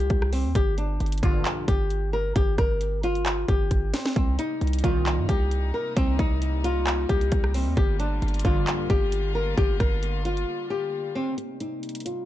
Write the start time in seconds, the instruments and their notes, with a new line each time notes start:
Already playing: nylon-string guitar G4, downlifter
0.10 808-style bass C2, kick, closed hi-hat
0.22 cross-stick
0.33 nylon-string guitar C4, open hi-hat
0.45 808-style bass D#2
0.55 808-style bass G1, nylon-string guitar G4, kick, closed hi-hat
0.78 nylon-string guitar D4, closed hi-hat
1.00 808-style bass G1, closed hi-hat
1.06 closed hi-hat
1.12 closed hi-hat
1.18 closed hi-hat
1.23 808-style bass G1, analog polysynth A#1 G2 D3, nylon-string guitar F4, kick, closed hi-hat
1.45 clap, closed hi-hat
1.68 808-style bass G1, nylon-string guitar G4, kick, closed hi-hat
1.90 closed hi-hat
2.13 nylon-string guitar A#4
2.36 808-style bass G1, nylon-string guitar G4, kick, closed hi-hat
2.58 808-style bass G1, nylon-string guitar A#4, kick, cross-stick, closed hi-hat
2.81 closed hi-hat
3.03 nylon-string guitar F4, closed hi-hat
3.15 closed hi-hat
3.26 clap, closed hi-hat
3.48 808-style bass G1, nylon-string guitar G4, kick, closed hi-hat
3.71 808-style bass G1, kick, closed hi-hat
3.94 nylon-string guitar C4, snare, open hi-hat
4.06 snare
4.16 808-style bass C2, string section C3 G3 A#3 D#4, nylon-string guitar C4, kick, closed hi-hat
4.39 nylon-string guitar D#4, closed hi-hat
4.61 808-style bass C2, closed hi-hat
4.67 closed hi-hat
4.73 closed hi-hat
4.79 closed hi-hat
4.84 808-style bass C2, analog polysynth C2 A#2 D#3, nylon-string guitar F4, kick, closed hi-hat
5.06 clap, closed hi-hat
5.18 808-style bass G2
5.29 808-style bass C2, nylon-string guitar G4, kick, closed hi-hat
5.51 closed hi-hat
5.74 nylon-string guitar A#4
5.97 808-style bass C2, nylon-string guitar C4, kick, closed hi-hat
6.19 808-style bass C2, nylon-string guitar D#4, kick, closed hi-hat
6.42 closed hi-hat
6.64 nylon-string guitar F4, closed hi-hat
6.87 clap, closed hi-hat
7.09 808-style bass C2, nylon-string guitar G4, kick, closed hi-hat
7.21 closed hi-hat
7.32 808-style bass C2, kick, closed hi-hat
7.44 cross-stick
7.54 nylon-string guitar C4, open hi-hat
7.66 808-style bass D#2
7.77 808-style bass G1, string section D3 F4, nylon-string guitar G4, kick, closed hi-hat
8.00 nylon-string guitar D4, closed hi-hat
8.22 808-style bass G1, closed hi-hat
8.28 closed hi-hat
8.34 closed hi-hat
8.39 closed hi-hat
8.45 808-style bass G1, analog polysynth A#1 G2 D3, nylon-string guitar F4, kick, closed hi-hat
8.67 clap, closed hi-hat
8.90 808-style bass G1, nylon-string guitar G4, kick, closed hi-hat
9.12 closed hi-hat
9.35 nylon-string guitar A#4
9.57 808-style bass G1, nylon-string guitar G4, kick, closed hi-hat
9.80 808-style bass G1, nylon-string guitar A#4, kick, cross-stick, closed hi-hat
10.03 closed hi-hat
10.25 nylon-string guitar F4, closed hi-hat
10.37 closed hi-hat
10.70 nylon-string guitar G4
11.15 nylon-string guitar C4
11.38 string section C3 G3 A#3 D#4, closed hi-hat
11.60 nylon-string guitar D#4, closed hi-hat
11.83 closed hi-hat
11.89 closed hi-hat
11.95 closed hi-hat
12.00 closed hi-hat
12.06 nylon-string guitar F4, closed hi-hat